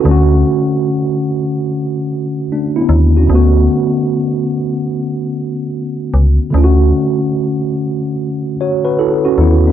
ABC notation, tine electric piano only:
X:1
M:4/4
L:1/16
Q:"Swing 16ths" 1/4=74
K:D
V:1 name="Tine electric piano"
z12 [A,D] [B,E]2 [CF]- | [CF] z12 z3 | z8 z2 [Fc] [FB] [EA] [CF] [B,E] [A,D] |]
V:2 name="Tine electric piano"
[D,A,CF]12- [D,A,CF]2 z2 | [D,A,B,F]16 | [D,A,C=F^F]16 |]